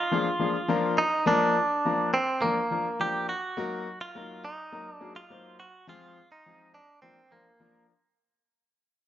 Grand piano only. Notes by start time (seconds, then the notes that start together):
0.11 F3 A#3 D4 F4 G#4
0.39 F3 A#3 D4 F4 G#4
0.68 F3 A#3 D4 F4 A#4
1.26 F3 A#3 D4 F4 A#4
1.85 F3 A#3 D4 F4 A#4
2.43 F3 A#3 D4 F4 A#4
2.71 F3 A#3 D4 F4 A#4
3.00 F3 A#3 D4 F4 A#4
3.57 F#3 A#3 D#4 F#4 A#4
4.15 F#3 A#3 D#4 F#4 A#4
4.72 F#3 A#3 D#4 F#4 A#4
5.00 F#3 A#3 D#4 F#4 G#4
5.30 F#3 A#3 D#4 F#4 C5
5.87 F3 G#3 C4 F4 G#4
6.46 F3 G#3 C4 F4 G#4
7.03 F3 A#3 D4 F4 A#4
7.31 F3 A#3 D4 F4 C5
7.60 F3 A#3 D4 F4 A#4